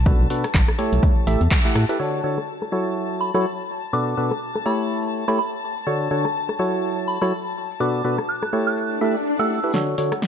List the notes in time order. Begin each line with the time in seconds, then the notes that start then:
Already playing: B1 A5
0.06 B2 D4 F#4 A4 B4, kick, closed hi-hat
0.20 B1
0.30 B2 D4 F#4 A4 B4, open hi-hat
0.44 cross-stick, closed hi-hat
0.54 A1, kick, clap, closed hi-hat
0.68 cross-stick
0.79 A3 E4 G4 A4 C#5, open hi-hat
0.93 B1, closed hi-hat
1.03 kick, closed hi-hat
1.27 A1 A3 E4 G4 A4 E5, open hi-hat
1.41 E2, closed hi-hat
1.51 kick, clap, closed hi-hat
1.65 A3 E4 G4 A4 F#5
1.75 A2, cross-stick, open hi-hat
1.89 E4 G4 A4 B4, closed hi-hat
2.00 D3 D4 F#4 A4 C#5 A5
2.24 D3 D4 F#4 A4 C#5
2.38 cross-stick
2.49 tambourine
2.62 cross-stick
2.72 F#3 E4 F#4 A4 C#5
3.21 B5
3.34 F#3 E4 F#4 A4 C#5 B5, cross-stick
3.83 tambourine
3.93 B2 D4 F#4 A4 B4 D6
4.08 tambourine
4.17 B2 D4 F#4 A4 B4
4.31 cross-stick, tambourine
4.42 tambourine
4.56 cross-stick
4.66 A3 E4 G4 A4 C#5 B5
4.80 tambourine
4.91 tambourine
5.04 tambourine
5.28 A3 E4 G4 A4 C#5 B5, tambourine
5.38 B5, tambourine
5.53 tambourine
5.77 tambourine
5.87 D3 D4 F#4 A4 C#5, tambourine
6.11 D3 D4 F#4 A4 C#5
6.25 cross-stick, tambourine
6.36 tambourine
6.49 cross-stick, tambourine
6.59 F#3 E4 F#4 A4 C#5
6.74 tambourine
6.84 tambourine
6.98 tambourine
7.08 B5
7.22 F#3 E4 F#4 A4 C#5 B5, cross-stick, tambourine
7.32 tambourine
7.46 tambourine
7.71 tambourine
7.80 B2 D4 F#4 A4 B4 D6, tambourine
7.95 tambourine
8.05 B2 D4 F#4 A4 B4
8.18 cross-stick, tambourine
8.29 F#6, tambourine
8.43 cross-stick, tambourine
8.53 A3 E4 G4 A4 C#5
8.67 F#6, tambourine
8.77 tambourine, swell
8.92 tambourine
9.01 A3 E4 G4 A4 E5
9.16 tambourine
9.26 tambourine
9.39 A3 E4 G4 A4 F#5 E6, tambourine
9.64 E4 G4 A4 B4, tambourine
9.74 D3 D4 F#4 A4 C#5 F#5, snare, closed hi-hat, riser
9.98 D3 D4 F#4 A4 C#5, open hi-hat
10.12 cross-stick, closed hi-hat
10.22 snare, closed hi-hat